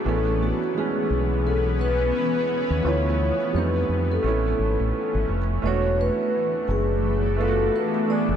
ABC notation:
X:1
M:4/4
L:1/16
Q:"Swing 16ths" 1/4=86
K:A
V:1 name="Vibraphone"
A2 F2 G4 A2 B6 | c4 B3 A6- A z2 | c2 B4 G4 A2 B2 d2 |]
V:2 name="Ambient pad"
[E,B,C]16 | z16 | [E,A,B,D]16 |]
V:3 name="Felt piano"
[E,A,B,C]2 z2 [E,G,B,C]6 z6 | [=F,A,B,E]2 z2 [=G,A,=C_E]4 [A,B,^C=E]6 z2 | [A,B,DF]6 z4 [A,B,D=F^F]2 z2 [A,B,DG]2 |]
V:4 name="Fingered electric bass" clef=bass
A,,,3 z3 B,,,6 z3 ^D,, | D,,3 z =F,,2 F,,2 A,,,2 G,,, A,,, z G,,, =F,,,2 | E,,,3 z3 F,,,6 z3 =F,,, |]